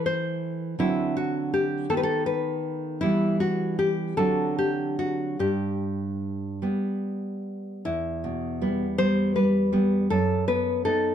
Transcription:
0.00 0.74 E3 soft
0.00 0.75 A3 soft
0.06 0.75 C5 medium
0.79 1.87 D3 soft
0.79 1.86 F#3 soft
0.79 1.87 C4 soft
0.79 1.14 E4 medium
1.17 1.51 F#4 medium
1.54 1.88 G4 soft
1.90 2.99 D#3 soft
1.90 2.98 A3 soft
1.90 2.98 B3 soft
1.90 1.97 A4 medium
1.97 2.03 B4 soft
2.03 2.25 A4 medium
2.26 2.98 B4 medium
3.01 4.14 E3 soft
3.01 4.13 G3 soft
3.01 4.14 B3 soft
3.01 3.37 E4 medium
3.40 3.76 F#4 soft
3.79 4.15 G4 soft
4.17 5.35 D3 soft
4.17 5.35 F#3 soft
4.17 5.35 C4 soft
4.17 4.54 A4 medium
4.59 4.96 G4 soft
4.99 5.37 F#4 soft
5.39 6.59 G2 soft
5.39 7.41 G4 soft
6.62 7.81 G3 soft
6.62 7.82 B3 soft
7.85 10.07 E2 soft
7.85 8.95 E4 medium
8.24 8.84 B2 soft
8.62 8.95 G3 soft
8.62 8.96 B3 soft
8.98 9.32 G3 soft
8.98 9.33 B3 soft
8.98 9.33 C5 medium
9.36 9.71 G3 soft
9.36 10.07 B4 soft
9.72 10.07 G3 soft
9.72 10.07 B3 soft
10.10 11.15 F#2 soft
10.10 10.45 A4 medium
10.48 10.84 B3 soft
10.48 10.82 B4 medium
10.85 11.15 B3 soft
10.85 11.15 D#4 soft
10.85 11.15 A4 medium

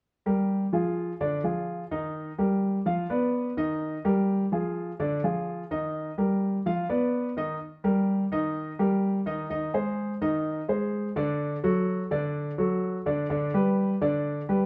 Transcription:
0.26 0.64 G3 medium
0.26 0.65 G4 medium
0.26 0.65 A#4 medium
0.73 1.11 F3 medium
0.73 1.12 F4 medium
0.73 1.12 G#4 medium
1.21 1.40 D3 medium
1.21 1.40 D4 medium
1.21 1.40 D5 medium
1.44 1.83 F3 medium
1.44 1.83 F4 medium
1.44 1.83 G#4 medium
1.91 2.30 D#3 medium
1.91 2.30 D#4 medium
1.91 2.30 D#5 medium
2.38 2.77 G3 medium
2.38 2.77 G4 medium
2.38 2.78 A#4 medium
2.86 3.05 F3 medium
2.86 3.05 F4 medium
2.86 3.06 F5 medium
3.10 3.49 B3 medium
3.10 3.49 B4 medium
3.10 3.49 D5 medium
3.57 3.96 D#3 medium
3.57 3.96 D#4 medium
3.57 3.96 D#5 medium
4.05 4.43 G3 medium
4.05 4.44 G4 medium
4.05 4.44 A#4 medium
4.52 4.91 F3 medium
4.52 4.91 F4 medium
4.52 4.91 G#4 medium
5.00 5.19 D3 medium
5.00 5.19 D4 medium
5.00 5.19 D5 medium
5.24 5.62 F3 medium
5.24 5.63 F4 medium
5.24 5.63 G#4 medium
5.71 6.10 D#3 medium
5.71 6.10 D#4 medium
5.71 6.10 D#5 medium
6.18 6.57 G3 medium
6.18 6.57 G4 medium
6.18 6.57 A#4 medium
6.66 6.85 F3 medium
6.66 6.85 F4 medium
6.66 6.86 F5 medium
6.89 7.28 B3 medium
6.89 7.28 B4 medium
6.89 7.28 D5 medium
7.37 7.56 D#3 medium
7.37 7.56 D#4 medium
7.37 7.57 D#5 medium
7.84 8.23 G3 medium
7.84 8.23 G4 medium
7.84 8.23 A#4 medium
8.32 8.71 D#3 medium
8.32 8.71 D#4 medium
8.32 8.71 D#5 medium
8.79 9.18 G3 medium
8.79 9.18 G4 medium
8.79 9.18 A#4 medium
9.26 9.46 D#3 medium
9.26 9.46 D#4 medium
9.26 9.46 D#5 medium
9.50 9.69 D#3 medium
9.50 9.70 D#4 medium
9.50 9.70 D#5 medium
9.74 10.13 G#3 medium
9.74 10.13 G#4 medium
9.74 10.13 C5 medium
10.22 10.60 D#3 medium
10.22 10.60 D#4 medium
10.22 10.60 D#5 medium
10.68 11.07 G#3 medium
10.68 11.08 G#4 medium
10.68 11.08 C5 medium
11.16 11.55 D3 medium
11.16 11.55 D4 medium
11.16 11.55 D5 medium
11.64 12.02 F#3 medium
11.64 12.03 F#4 medium
11.64 12.03 A4 medium
12.11 12.50 D3 medium
12.11 12.50 D4 medium
12.11 12.50 D5 medium
12.58 12.97 F#3 medium
12.58 12.97 F#4 medium
12.58 12.97 A4 medium
13.06 13.25 D3 medium
13.06 13.26 D4 medium
13.06 13.26 D5 medium
13.30 13.49 D3 medium
13.30 13.49 D4 medium
13.30 13.49 D5 medium
13.54 13.93 G3 medium
13.54 13.93 G4 medium
13.54 13.93 B4 medium
14.01 14.40 D3 medium
14.01 14.40 D4 medium
14.01 14.40 D5 medium
14.49 14.66 G3 medium
14.49 14.66 G4 medium
14.49 14.66 B4 medium

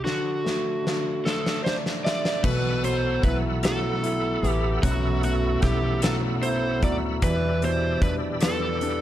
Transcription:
0.04 0.82 D3 soft
0.04 1.60 F#4 medium
0.04 snare soft
0.44 1.23 A3 soft
0.44 snare soft
0.84 2.40 D3 soft
0.84 snare medium
1.25 2.41 A3 soft
1.25 1.64 A4 medium
1.25 snare medium
1.46 snare medium
1.64 1.75 C5 medium
1.64 2.02 D5 soft
1.64 snare medium
1.86 snare medium
2.04 2.42 D5 medium
2.04 2.42 E5 soft
2.04 snare medium
2.25 snare medium
2.43 3.20 B1 medium
2.43 3.23 B2 medium
2.43 4.79 B2 medium
2.43 3.22 E3 medium
2.43 3.23 A3 medium
2.43 3.25 B3 medium
2.43 3.24 F#4 medium
2.43 7.18 A4 medium
2.43 2.85 B4 medium
2.43 7.18 F#5 medium
2.43 9.01 B5 medium
2.43 9.01 E6 medium
2.43 kick medium
2.43 crash medium
2.84 3.61 F#3 soft
2.84 3.24 C5 medium
2.84 closed hi-hat medium
3.23 4.39 B1 medium
3.23 3.63 E3 soft
3.23 3.63 A3 medium
3.23 3.63 B3 medium
3.23 4.01 E4 soft
3.23 3.62 F#4 medium
3.23 3.35 B4 medium
3.23 kick medium
3.23 closed hi-hat soft
3.63 4.44 B2 soft
3.63 4.46 E3 soft
3.63 5.19 F#3 medium
3.63 4.44 A3 medium
3.63 4.44 B3 medium
3.63 4.42 F#4 medium
3.63 4.49 A4 medium
3.63 snare loud
3.63 closed hi-hat medium
4.03 5.59 E4 medium
4.03 closed hi-hat medium
4.43 4.80 A1 medium
4.43 5.99 E3 medium
4.43 4.83 A3 soft
4.43 4.83 B3 soft
4.43 4.83 F#4 soft
4.43 closed hi-hat soft
4.49 4.87 G4 medium
4.83 5.59 B1 medium
4.83 7.18 F#2 medium
4.83 5.63 B2 medium
4.83 5.62 E3 medium
4.83 5.62 A3 medium
4.83 5.64 B3 medium
4.83 5.23 F#4 medium
4.83 5.64 F#4 medium
4.83 kick loud
4.83 closed hi-hat medium
5.23 6.78 A3 soft
5.23 5.61 F#4 medium
5.23 closed hi-hat soft
5.62 6.82 B1 medium
5.62 6.03 E3 medium
5.62 6.03 A3 medium
5.62 6.02 B3 medium
5.62 6.42 E4 soft
5.62 6.00 G4 medium
5.62 kick medium
5.62 snare soft
5.62 closed hi-hat soft
6.02 6.83 B2 soft
6.02 6.85 E3 medium
6.02 6.81 F#3 soft
6.02 6.83 A3 medium
6.02 6.83 B3 medium
6.02 6.81 F#4 medium
6.02 6.14 A4 medium
6.02 snare loud
6.02 closed hi-hat medium
6.43 7.20 E4 soft
6.43 6.80 C5 medium
6.43 closed hi-hat medium
6.82 7.20 D2 medium
6.82 7.21 F#3 medium
6.82 7.23 A3 soft
6.82 7.23 B3 soft
6.82 7.22 F#4 soft
6.82 6.95 D5 medium
6.82 kick medium
6.82 closed hi-hat soft
7.22 8.02 E2 medium
7.22 7.98 E2 medium
7.22 8.02 B2 medium
7.22 9.01 E3 medium
7.22 8.01 E3 medium
7.22 8.02 G3 medium
7.22 8.03 D4 medium
7.22 8.04 E4 medium
7.22 9.01 G4 medium
7.22 7.64 B4 medium
7.22 9.01 D5 medium
7.22 kick loud
7.22 closed hi-hat medium
7.62 9.01 B2 soft
7.62 8.02 C5 medium
7.62 closed hi-hat soft
8.01 9.01 E2 medium
8.01 8.42 E3 medium
8.01 8.41 G3 medium
8.01 8.81 D4 soft
8.01 8.41 D4 medium
8.01 8.40 E4 medium
8.01 8.14 B4 medium
8.01 kick medium
8.01 closed hi-hat soft
8.41 9.01 E2 medium
8.41 9.01 B2 soft
8.41 9.01 E3 medium
8.41 9.01 G3 medium
8.41 9.01 B3 medium
8.41 9.01 D4 medium
8.41 9.01 E4 medium
8.41 9.01 A4 medium
8.41 snare loud
8.41 closed hi-hat medium
8.81 9.01 D4 medium
8.81 closed hi-hat medium

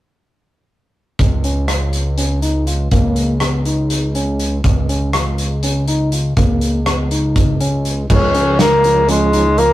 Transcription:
1.19 2.88 C#2 medium
1.19 kick medium
1.19 closed hi-hat medium
1.44 1.65 C#4 medium
1.44 closed hi-hat soft
1.68 2.09 F4 medium
1.68 cross-stick medium
1.68 closed hi-hat medium
1.93 closed hi-hat soft
2.18 2.38 C#4 medium
2.18 closed hi-hat medium
2.42 2.63 D#4 medium
2.42 closed hi-hat soft
2.67 2.88 F4 medium
2.67 closed hi-hat soft
2.91 4.61 C#2 medium
2.91 3.33 A#3 medium
2.91 kick medium
2.91 closed hi-hat medium
3.16 closed hi-hat soft
3.40 3.62 B3 medium
3.40 cross-stick medium
3.40 closed hi-hat medium
3.65 4.07 D#4 medium
3.65 closed hi-hat soft
3.90 closed hi-hat medium
4.15 4.56 C#4 medium
4.15 closed hi-hat soft
4.39 closed hi-hat soft
4.64 6.34 C#2 medium
4.64 kick medium
4.64 closed hi-hat medium
4.89 5.10 C#4 medium
4.89 closed hi-hat soft
5.13 5.55 F4 medium
5.13 cross-stick medium
5.13 closed hi-hat medium
5.38 closed hi-hat soft
5.63 5.84 C#4 medium
5.63 closed hi-hat medium
5.88 6.08 D#4 medium
5.88 closed hi-hat soft
6.12 6.33 F4 medium
6.12 closed hi-hat medium
6.37 8.06 C#2 medium
6.37 6.78 A#3 medium
6.37 kick medium
6.37 closed hi-hat medium
6.61 closed hi-hat soft
6.86 7.07 B3 medium
6.86 cross-stick medium
6.86 closed hi-hat medium
7.11 7.52 D#4 medium
7.11 closed hi-hat medium
7.36 kick medium
7.36 closed hi-hat medium
7.61 8.01 C#4 medium
7.61 closed hi-hat medium
7.85 closed hi-hat soft
8.09 9.73 C#2 medium
8.09 8.68 F3 medium
8.09 8.69 G#3 medium
8.09 8.56 C#4 medium
8.09 8.69 C#4 medium
8.09 kick medium
8.09 crash medium
8.35 8.55 C#4 medium
8.35 closed hi-hat medium
8.59 9.05 A#3 medium
8.59 9.00 F4 medium
8.59 snare medium
8.59 closed hi-hat medium
8.83 9.03 F3 medium
8.83 9.03 G#3 medium
8.83 9.04 C#4 medium
8.83 closed hi-hat medium
9.08 9.47 F3 medium
9.08 9.48 G#3 medium
9.08 9.60 G#3 medium
9.08 9.29 C#4 medium
9.08 9.48 C#4 medium
9.08 closed hi-hat medium
9.33 9.53 D#4 medium
9.33 closed hi-hat soft
9.57 9.73 F3 medium
9.57 9.73 G#3 medium
9.57 9.73 A#3 medium
9.57 9.73 C#4 medium
9.57 9.73 F4 medium
9.57 closed hi-hat medium

